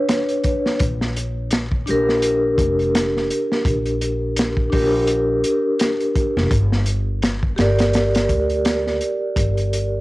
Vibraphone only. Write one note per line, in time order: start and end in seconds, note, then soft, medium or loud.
0.00 0.77 D4 medium
0.00 0.79 B4 medium
0.00 0.80 C#5 loud
1.86 4.69 D4 medium
1.86 4.70 G4 medium
1.91 4.71 A#4 loud
4.70 6.48 D4 medium
4.70 6.50 G4 medium
4.75 6.51 A#4 loud
7.56 10.01 G4 medium
7.56 10.01 A#4 medium
7.61 10.01 D5 loud